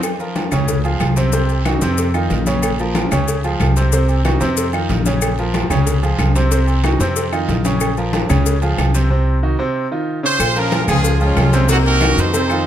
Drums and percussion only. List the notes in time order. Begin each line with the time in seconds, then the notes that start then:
0.03 cowbell, high conga, low agogo, long guiro, claves, maracas
0.19 high conga, maracas
0.36 cowbell, high conga, low timbale, low agogo, short guiro, maracas
0.52 low conga, low agogo, short guiro, claves, maracas
0.68 cowbell, high conga, low conga, long guiro, maracas
0.84 high conga, low agogo, maracas
1.00 cowbell, high conga, low timbale, low agogo, short guiro, claves, maracas
1.16 high conga, short guiro, maracas
1.32 cowbell, high conga, low agogo, long guiro, maracas
1.49 high conga, low agogo, maracas
1.65 cowbell, high conga, low timbale, low agogo, short guiro, claves, maracas
1.81 short guiro, maracas
1.98 cowbell, high conga, low agogo, long guiro, maracas
2.14 high conga, low agogo, claves, maracas
2.30 cowbell, high conga, low timbale, short guiro, maracas
2.46 cowbell, high conga, low agogo, short guiro, maracas
2.62 cowbell, high conga, low agogo, long guiro, claves, maracas
2.79 high conga, maracas
2.95 cowbell, high conga, low timbale, low agogo, short guiro, maracas
3.11 low conga, low agogo, short guiro, claves, maracas
3.27 cowbell, high conga, long guiro, maracas
3.44 high conga, low agogo, maracas
3.60 cowbell, high conga, low timbale, low agogo, short guiro, claves, maracas
3.76 short guiro, maracas
3.92 cowbell, high conga, low agogo, maracas
4.09 low agogo, maracas
4.25 cowbell, high conga, low timbale, low agogo, short guiro, claves, maracas
4.41 short guiro, maracas
4.57 cowbell, low agogo, long guiro, maracas
4.73 high conga, low agogo, claves, maracas
4.89 cowbell, high conga, low timbale, short guiro, maracas
5.05 cowbell, high conga, low agogo, short guiro, maracas
5.21 cowbell, high conga, low agogo, long guiro, claves, maracas
5.38 high conga, maracas
5.54 cowbell, high conga, low timbale, low agogo, short guiro, maracas
5.70 low conga, low agogo, short guiro, claves, maracas
5.87 cowbell, high conga, low conga, long guiro, maracas
6.03 high conga, low agogo, maracas
6.19 cowbell, high conga, low timbale, low agogo, short guiro, claves, maracas
6.35 short guiro, maracas
6.51 cowbell, high conga, low agogo, long guiro, maracas
6.67 high conga, low agogo, maracas
6.84 cowbell, high conga, low timbale, low agogo, short guiro, claves, maracas
7.00 short guiro, maracas
7.16 cowbell, high conga, low agogo, long guiro, maracas
7.33 high conga, low agogo, claves, maracas
7.49 cowbell, high conga, low timbale, short guiro, maracas
7.65 cowbell, high conga, low agogo, short guiro, maracas
7.80 cowbell, high conga, low agogo, long guiro, claves, maracas
7.97 high conga, maracas
8.13 cowbell, high conga, low timbale, low agogo, short guiro, maracas
8.29 low conga, low agogo, short guiro, claves, maracas
8.46 cowbell, high conga, long guiro, maracas
8.62 high conga, low agogo, maracas
8.78 cowbell, high conga, low timbale, low agogo, short guiro, claves, maracas
8.94 short guiro, maracas
10.39 cowbell, high conga, low agogo, long guiro, claves, maracas
10.56 high conga, maracas
10.72 cowbell, high conga, low timbale, low agogo, short guiro, maracas
10.88 low conga, low agogo, short guiro, claves, maracas
11.04 cowbell, high conga, long guiro, maracas
11.20 high conga, low agogo, maracas
11.36 cowbell, high conga, low timbale, low agogo, short guiro, claves, maracas
11.53 high conga, short guiro, maracas
11.69 cowbell, high conga, low agogo, long guiro, maracas
11.85 high conga, low agogo, maracas
12.01 cowbell, high conga, low timbale, low agogo, short guiro, claves, maracas
12.17 short guiro, maracas
12.33 cowbell, high conga, low agogo, long guiro, maracas
12.49 high conga, low agogo, claves, maracas